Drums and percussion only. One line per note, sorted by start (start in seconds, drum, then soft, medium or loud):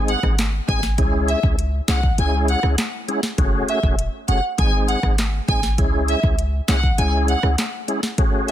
0.08 closed hi-hat medium
0.23 kick loud
0.23 cross-stick medium
0.38 snare loud
0.38 clap medium
0.38 closed hi-hat medium
0.69 kick loud
0.69 closed hi-hat soft
0.83 snare medium
0.98 kick loud
0.98 closed hi-hat medium
1.28 closed hi-hat medium
1.43 kick loud
1.59 closed hi-hat medium
1.88 snare loud
1.88 clap loud
1.88 closed hi-hat medium
2.03 kick medium
2.18 closed hi-hat medium
2.48 closed hi-hat soft
2.63 cross-stick medium
2.78 snare loud
2.78 clap medium
2.78 closed hi-hat medium
3.09 closed hi-hat soft
3.23 snare medium
3.38 kick loud
3.38 closed hi-hat medium
3.68 closed hi-hat medium
3.83 kick loud
3.99 closed hi-hat medium
4.28 closed hi-hat medium
4.58 kick loud
4.58 closed hi-hat medium
4.88 closed hi-hat medium
5.03 kick loud
5.03 cross-stick medium
5.18 snare loud
5.18 clap loud
5.18 closed hi-hat medium
5.48 kick loud
5.48 closed hi-hat medium
5.63 snare medium
5.78 kick loud
5.78 closed hi-hat medium
6.08 closed hi-hat medium
6.23 kick medium
6.39 closed hi-hat medium
6.68 snare loud
6.68 clap loud
6.68 closed hi-hat medium
6.83 kick medium
6.98 closed hi-hat medium
7.28 closed hi-hat medium
7.43 cross-stick medium
7.58 snare loud
7.58 clap medium
7.58 closed hi-hat medium
7.88 closed hi-hat soft
8.03 snare medium
8.18 kick loud
8.18 closed hi-hat medium